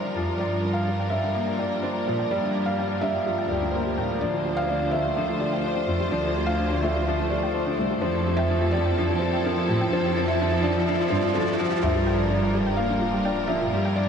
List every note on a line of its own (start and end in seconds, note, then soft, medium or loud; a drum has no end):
0.00 0.16 F3 medium
0.00 1.12 G3 medium
0.00 4.17 G3 medium
0.00 0.87 D4 medium
0.00 7.98 D4 medium
0.00 4.17 F4 medium
0.00 4.17 A#4 medium
0.00 0.14 C5 medium
0.04 0.10 D4 medium
0.16 0.32 F2 medium
0.16 0.38 F3 loud
0.28 0.37 G4 medium
0.38 1.77 G2 medium
0.38 0.63 F3 medium
0.38 0.76 D5 medium
0.38 0.46 G5 medium
0.64 0.70 D4 medium
0.73 1.12 F5 medium
0.87 1.10 D4 medium
0.87 0.96 G4 medium
1.00 1.05 G5 loud
1.10 1.25 G3 medium
1.10 1.60 E5 medium
1.24 1.29 D4 medium
1.35 1.58 A#3 medium
1.48 1.56 G4 medium
1.58 1.81 D4 medium
1.58 1.83 D5 medium
1.58 1.65 G5 medium
1.83 2.06 D4 medium
1.83 1.89 D4 medium
1.83 2.05 C5 medium
2.07 2.23 A#2 medium
2.07 2.30 F3 medium
2.07 2.15 G4 medium
2.19 2.24 G5 medium
2.30 3.67 G2 medium
2.30 2.53 G3 medium
2.30 2.68 D5 medium
2.43 2.48 D4 medium
2.55 2.77 D4 medium
2.66 2.75 G4 medium
2.66 3.03 F5 medium
2.79 3.01 D4 medium
2.79 2.84 G5 medium
3.01 3.25 G3 medium
3.01 3.08 D4 medium
3.01 3.51 E5 loud
3.26 3.49 F3 medium
3.26 3.34 G4 medium
3.38 3.44 G5 loud
3.49 3.91 D2 medium
3.49 3.73 G4 medium
3.49 3.74 D5 medium
3.62 3.67 D4 medium
3.72 3.88 A#3 medium
3.72 3.95 C5 medium
3.86 3.94 G4 medium
3.98 4.14 A2 medium
3.98 4.21 A#3 medium
3.98 4.03 G5 loud
4.21 5.58 D2 medium
4.21 7.98 D3 medium
4.21 4.44 F3 medium
4.21 4.27 D4 medium
4.21 7.99 F4 medium
4.21 7.98 C5 medium
4.21 4.58 D5 loud
4.21 riser medium
4.34 4.39 F4 medium
4.46 4.53 G4 medium
4.57 4.94 F5 medium
4.57 4.63 G5 medium
4.69 4.92 D4 medium
4.81 4.87 D4 medium
4.91 5.07 A3 medium
4.91 4.98 F4 medium
4.91 5.41 E5 medium
5.05 5.13 G4 medium
5.16 5.39 F3 medium
5.16 5.22 D4 medium
5.29 5.34 F4 medium
5.40 5.49 G4 medium
5.40 5.65 D5 medium
5.53 5.58 G5 medium
5.63 5.87 D4 medium
5.63 5.86 C5 medium
5.76 5.82 D4 medium
5.88 6.04 F2 medium
5.88 6.02 A3 medium
5.88 5.94 F4 medium
6.00 6.08 G4 medium
6.11 7.49 D2 loud
6.11 6.34 F3 medium
6.11 6.17 D4 medium
6.11 6.48 D5 medium
6.24 6.29 F4 medium
6.36 6.44 G4 medium
6.46 6.84 F5 loud
6.46 6.53 G5 medium
6.59 6.82 D4 medium
6.72 6.77 D4 medium
6.82 6.97 A3 medium
6.82 6.89 F4 medium
6.82 7.32 E5 medium
6.96 7.03 G4 medium
7.07 7.30 F3 medium
7.07 7.13 D4 medium
7.20 7.25 F4 medium
7.30 7.39 G4 medium
7.30 7.55 D5 medium
7.43 7.48 G5 loud
7.54 7.77 D4 medium
7.54 7.76 C5 medium
7.67 7.72 D4 medium
7.79 7.95 C2 medium
7.79 7.92 A3 medium
7.79 7.84 F4 medium
7.90 7.98 G4 medium
8.01 9.39 F2 loud
8.01 8.25 F3 medium
8.01 11.80 F3 medium
8.01 11.80 C4 medium
8.01 8.08 D4 medium
8.01 11.80 E4 medium
8.01 11.80 A4 medium
8.01 8.39 C5 loud
8.15 8.20 F4 medium
8.27 8.35 G4 medium
8.37 8.74 E5 loud
8.37 8.44 G5 loud
8.50 8.73 F3 loud
8.50 8.55 D4 medium
8.62 8.67 F4 medium
8.71 8.82 G4 medium
8.71 9.22 D5 loud
8.86 8.91 G5 loud
8.98 9.20 F3 loud
8.98 9.03 D4 medium
9.10 9.15 F4 medium
9.19 9.29 G4 medium
9.19 9.45 C5 medium
9.33 9.39 G5 loud
9.44 9.68 F3 loud
9.44 9.51 D4 medium
9.44 9.67 A#4 medium
9.57 9.62 F4 medium
9.69 9.85 A2 medium
9.69 9.77 G4 medium
9.81 9.86 G5 loud
9.92 11.29 F2 loud
9.92 10.15 F3 loud
9.92 9.98 D4 medium
9.92 10.30 C5 loud
10.05 10.10 F4 medium
10.16 10.38 F3 loud
10.16 10.22 D4 medium
10.28 10.34 F4 medium
10.28 10.65 E5 loud
10.40 10.62 F3 loud
10.40 10.46 D4 medium
10.53 10.58 F4 medium
10.63 10.86 F3 loud
10.63 10.70 D4 medium
10.63 11.13 D5 loud
10.76 10.82 F4 medium
10.87 11.09 F3 loud
10.87 10.94 D4 medium
11.01 11.06 F4 medium
11.10 11.28 G2 loud
11.10 11.33 F3 loud
11.10 11.17 D4 medium
11.10 11.36 C5 medium
11.25 11.30 F4 medium
11.34 11.57 F3 loud
11.34 11.41 D4 medium
11.34 11.57 A4 medium
11.48 11.53 F4 medium
11.59 11.81 F3 loud
11.59 11.65 D4 medium
11.71 11.77 F4 medium
11.82 13.20 G2 loud
11.82 12.05 F3 medium
11.82 14.09 G3 medium
11.82 14.09 D4 medium
11.82 14.09 F4 medium
11.82 11.89 F4 medium
11.82 14.09 A#4 medium
11.82 12.20 E5 medium
11.82 sub drop medium
11.95 12.03 G4 medium
12.07 12.12 G5 medium
12.18 12.52 D5 medium
12.30 12.53 D4 medium
12.30 12.36 D4 medium
12.42 12.48 F4 medium
12.53 12.68 G3 medium
12.53 12.63 G4 medium
12.53 12.79 D5 medium
12.66 12.72 G5 loud
12.77 13.01 A#3 medium
12.77 13.51 F5 loud
12.90 12.95 D4 medium
13.01 13.23 D4 medium
13.01 13.07 F4 medium
13.14 13.22 G4 medium
13.25 13.48 D4 loud
13.25 13.31 G5 loud
13.48 13.66 A#2 medium
13.48 13.72 F3 loud
13.48 13.55 D4 medium
13.48 13.98 E5 medium
13.61 13.67 F4 medium
13.73 14.09 G2 medium
13.73 13.96 G3 loud
13.73 13.82 G4 medium
13.85 13.91 G5 loud
13.96 14.09 D4 medium
13.96 14.09 D5 loud